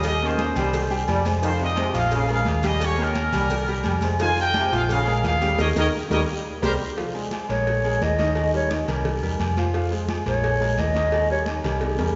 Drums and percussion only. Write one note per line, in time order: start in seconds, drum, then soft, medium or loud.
0.03 cowbell loud
0.03 high conga soft
0.03 low agogo loud
0.03 long guiro medium
0.03 maracas loud
0.21 high conga soft
0.21 maracas soft
0.39 cowbell medium
0.39 high conga loud
0.39 low agogo medium
0.39 short guiro medium
0.39 maracas soft
0.56 cowbell medium
0.56 high conga soft
0.56 low conga medium
0.56 low agogo loud
0.56 short guiro medium
0.56 maracas medium
0.73 cowbell loud
0.73 high conga soft
0.73 low conga medium
0.73 long guiro medium
0.73 maracas medium
0.91 high conga soft
0.91 low agogo medium
0.91 maracas soft
1.08 cowbell medium
1.08 high conga medium
1.08 low timbale medium
1.08 low agogo loud
1.08 short guiro medium
1.08 maracas soft
1.25 cowbell medium
1.25 high conga medium
1.25 low agogo medium
1.25 short guiro medium
1.25 maracas medium
1.43 cowbell loud
1.43 long guiro medium
1.43 maracas loud
1.59 high conga soft
1.59 low agogo medium
1.59 maracas soft
1.76 cowbell medium
1.76 high conga loud
1.76 low agogo loud
1.76 short guiro medium
1.76 maracas soft
1.94 cowbell medium
1.94 high conga soft
1.94 short guiro medium
1.94 maracas medium
2.11 cowbell loud
2.11 high conga soft
2.11 low agogo medium
2.11 long guiro medium
2.11 maracas loud
2.29 low agogo loud
2.29 maracas soft
2.45 cowbell medium
2.45 high conga loud
2.45 short guiro medium
2.45 maracas soft
2.63 cowbell medium
2.63 high conga medium
2.63 short guiro medium
2.63 maracas medium
2.80 cowbell loud
2.80 high conga soft
2.80 low agogo loud
2.80 long guiro medium
2.80 maracas loud
2.99 high conga soft
2.99 maracas soft
3.15 cowbell medium
3.15 high conga medium
3.15 low agogo medium
3.15 short guiro medium
3.15 maracas soft
3.33 cowbell medium
3.33 high conga soft
3.33 low conga medium
3.33 low agogo loud
3.33 short guiro medium
3.33 maracas medium
3.50 cowbell loud
3.50 high conga soft
3.50 low conga medium
3.50 long guiro medium
3.50 maracas medium
3.66 high conga soft
3.66 low agogo medium
3.66 maracas soft
3.84 cowbell medium
3.84 high conga medium
3.84 low agogo loud
3.84 short guiro medium
3.84 maracas soft
4.01 cowbell medium
4.01 high conga medium
4.01 low agogo medium
4.01 short guiro medium
4.01 maracas medium
4.19 cowbell loud
4.19 high conga soft
4.19 long guiro medium
4.19 maracas loud
4.37 high conga soft
4.37 low agogo medium
4.37 maracas soft
4.54 cowbell medium
4.54 high conga loud
4.54 low agogo loud
4.54 short guiro medium
4.54 maracas soft
4.72 cowbell medium
4.72 high conga soft
4.72 short guiro medium
4.72 maracas medium
4.89 cowbell loud
4.89 high conga soft
4.89 low agogo medium
4.89 long guiro medium
4.89 maracas loud
5.06 high conga soft
5.06 low agogo loud
5.06 maracas soft
5.23 cowbell medium
5.23 high conga medium
5.23 low timbale medium
5.23 short guiro medium
5.23 maracas soft
5.42 cowbell medium
5.42 high conga medium
5.42 short guiro medium
5.42 maracas medium
5.58 cowbell medium
5.58 high conga loud
5.58 high timbale loud
5.58 long guiro loud
5.58 maracas loud
5.76 cowbell loud
5.76 high conga medium
5.76 high timbale loud
5.76 long guiro medium
5.76 maracas loud
6.11 cowbell medium
6.11 high conga medium
6.11 high timbale loud
6.11 long guiro loud
6.11 maracas loud
6.63 cowbell loud
6.63 high conga loud
6.63 high timbale loud
6.63 long guiro loud
6.63 maracas medium
6.98 cowbell loud
6.98 high conga soft
6.98 long guiro medium
7.15 high conga soft
7.15 low agogo medium
7.31 cowbell medium
7.31 high conga medium
7.31 low agogo medium
7.31 short guiro medium
7.49 cowbell medium
7.49 high conga soft
7.49 short guiro medium
7.67 cowbell loud
7.67 high conga soft
7.67 low agogo medium
7.67 long guiro medium
7.84 high conga soft
7.84 low agogo loud
8.02 cowbell medium
8.02 high conga medium
8.02 low timbale medium
8.02 short guiro medium
8.19 cowbell medium
8.19 high conga medium
8.19 short guiro medium
8.35 cowbell medium
8.35 low agogo loud
8.35 long guiro medium
8.52 high conga soft
8.71 cowbell medium
8.71 high conga medium
8.71 low agogo medium
8.71 short guiro medium
8.88 cowbell medium
8.88 high conga soft
8.88 low conga medium
8.88 low agogo loud
8.88 short guiro medium
9.05 cowbell loud
9.05 high conga soft
9.05 low conga medium
9.05 long guiro medium
9.23 high conga soft
9.23 low agogo medium
9.39 cowbell medium
9.39 high conga medium
9.39 low agogo loud
9.39 short guiro medium
9.57 cowbell medium
9.57 high conga medium
9.57 low agogo medium
9.57 short guiro medium
9.74 cowbell loud
9.74 high conga soft
9.74 long guiro medium
9.91 high conga soft
9.91 low agogo medium
10.09 cowbell medium
10.09 high conga loud
10.09 low agogo loud
10.09 short guiro medium
10.26 cowbell medium
10.26 short guiro medium
10.43 cowbell loud
10.43 high conga soft
10.43 low agogo medium
10.43 long guiro medium
10.61 high conga soft
10.61 low agogo loud
10.77 cowbell medium
10.77 high conga medium
10.77 low timbale medium
10.77 short guiro medium
10.94 cowbell medium
10.94 high conga medium
10.94 short guiro medium
11.12 cowbell loud
11.12 high conga soft
11.12 low agogo loud
11.12 long guiro medium
11.29 high conga soft
11.46 cowbell medium
11.46 high conga medium
11.46 low agogo medium
11.46 short guiro medium
11.64 cowbell medium
11.64 high conga soft
11.64 low conga medium
11.64 low agogo loud
11.64 short guiro medium
11.81 cowbell loud
11.81 high conga soft
11.81 high timbale medium
11.81 long guiro medium
11.99 high conga soft
11.99 high timbale loud
11.99 low agogo medium